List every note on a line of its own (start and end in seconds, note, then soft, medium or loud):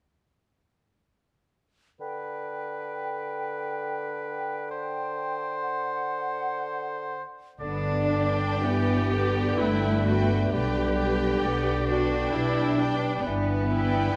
2.00 7.22 D3 soft
2.00 4.66 B4 soft
2.00 5.56 G5 soft
4.71 7.23 C5 soft
5.61 7.26 F#5 soft
7.60 8.51 G1 soft
7.60 8.65 D3 soft
7.60 8.07 B3 soft
7.60 13.22 B3 soft
7.60 8.59 D4 soft
7.60 13.22 D4 soft
7.60 9.60 D5 soft
7.60 8.59 D5 soft
8.10 8.63 D4 soft
8.10 9.09 B4 soft
8.10 9.09 D5 soft
8.10 9.10 G5 soft
8.62 9.48 G1 soft
8.62 9.14 E3 soft
8.62 9.59 B3 soft
8.62 9.60 G4 medium
8.62 9.59 B4 soft
9.11 12.34 D3 soft
9.11 10.05 B4 soft
9.11 10.05 D5 soft
9.11 10.05 G5 soft
9.58 10.41 G1 soft
9.58 10.53 A3 soft
9.58 10.06 E4 medium
9.58 10.51 B4 soft
9.58 10.53 E5 soft
10.06 10.52 F#4 medium
10.06 10.52 B4 soft
10.06 10.52 D5 soft
10.06 10.52 G5 soft
10.51 11.33 B1 soft
10.51 11.44 G3 soft
10.51 11.86 G4 medium
10.51 11.42 B4 soft
10.51 10.98 B4 soft
10.51 10.98 D5 soft
10.51 11.44 D5 soft
10.51 10.97 G5 soft
10.98 11.88 B4 soft
10.98 11.88 D5 soft
10.98 11.87 G5 soft
11.42 12.23 B1 soft
11.42 11.90 B3 soft
11.42 12.09 B4 soft
11.42 11.87 D5 soft
11.88 13.23 D4 soft
11.88 12.34 F#4 medium
11.88 12.78 B4 soft
11.88 13.21 D5 soft
11.88 12.78 D5 soft
11.88 12.77 G5 soft
12.33 13.14 B1 soft
12.33 13.23 G3 soft
12.33 12.79 E4 medium
12.33 13.23 B4 soft
12.77 13.24 D4 medium
12.77 13.24 B4 soft
12.77 13.24 D5 soft
12.77 13.23 G5 soft
13.23 14.04 G1 soft
13.23 14.16 E3 soft
13.23 14.16 B3 soft
13.23 14.16 D4 soft
13.23 14.16 B4 soft
13.23 13.70 D5 soft
13.69 14.11 E4 medium
13.69 14.16 B4 soft
13.69 14.16 D5 soft
13.69 14.16 G5 soft
14.13 14.16 D4 soft